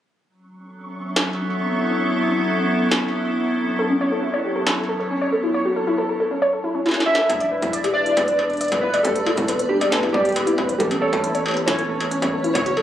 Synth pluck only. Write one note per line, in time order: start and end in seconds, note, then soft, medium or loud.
3.79 3.85 A4 medium
3.90 3.96 C#4 medium
4.01 4.07 C#5 loud
4.12 4.18 A4 medium
4.23 4.29 E4 medium
4.34 4.42 C#5 loud
4.45 4.53 G4 medium
4.56 4.64 A4 medium
4.67 4.75 E4 loud
4.78 4.83 A4 medium
4.89 4.97 A4 medium
5.00 5.05 A4 medium
5.11 5.16 C#4 medium
5.22 5.27 C#5 loud
5.32 5.38 A4 medium
5.44 5.49 E4 medium
5.54 5.63 C#5 loud
5.65 5.74 F#4 medium
5.76 5.85 A4 medium
5.87 5.96 E4 loud
5.98 6.04 A4 medium
6.09 6.18 A4 medium
6.20 6.26 A4 medium
6.31 6.37 C#4 medium
6.42 6.48 C#5 loud
6.53 6.59 A4 medium
6.64 6.67 E4 medium
6.75 6.80 C#4 medium
6.86 6.91 E4 medium
6.97 7.02 C#4 medium
7.08 7.13 E4 medium
7.19 7.27 A4 medium
7.30 7.35 D4 medium
7.40 7.46 D5 loud
7.51 7.57 B4 medium
7.62 7.68 E4 medium
7.73 7.82 D5 loud
7.84 7.93 G4 medium
7.95 8.04 B4 medium
8.06 8.15 E4 medium
8.17 8.23 B4 medium
8.28 8.37 B4 medium
8.39 8.45 B4 medium
8.50 8.56 D4 medium
8.61 8.67 D5 loud
8.72 8.78 B4 medium
8.83 8.89 E4 medium
8.94 9.02 D5 loud
9.05 9.13 G4 medium
9.16 9.24 B4 medium
9.27 9.35 E4 loud
9.38 9.43 B4 medium
9.49 9.57 B4 medium
9.59 9.65 B4 medium
9.70 9.76 D4 medium
9.81 9.87 D5 loud
9.92 9.98 B4 medium
10.03 10.09 E4 medium
10.14 10.23 D5 loud
10.25 10.34 G4 medium
10.36 10.45 B4 medium
10.47 10.56 E4 loud
10.58 10.64 B4 medium
10.69 10.77 B4 medium
10.80 10.86 A4 medium
10.91 10.97 C#4 medium
11.02 11.07 C#5 loud
11.13 11.18 A4 medium
11.24 11.29 E4 medium
11.35 11.43 C#5 loud
11.46 11.54 G4 medium
11.56 11.65 A4 medium
11.67 11.76 E4 loud
11.78 11.84 A4 medium
11.89 11.98 A4 medium
12.00 12.06 A4 medium
12.11 12.17 C#4 medium
12.22 12.28 C#5 loud
12.33 12.39 A4 medium
12.44 12.50 E4 medium
12.55 12.64 C#5 loud
12.66 12.75 F#4 medium
12.77 12.82 A4 medium